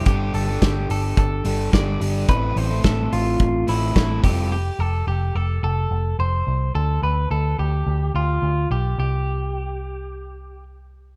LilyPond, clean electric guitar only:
\new Staff \with { instrumentName = "Clean electric guitar" } { \time 4/4 \key c \major \tempo 4 = 107 g'8 a'8 g'8 a'8 a'4 d''4 | b'8 c''8 a'8 f'4 e'4 g'8 | g'8 a'8 g'8 a'8 a'4 c''4 | a'8 b'8 a'8 g'4 f'4 g'8 |
g'2. r4 | }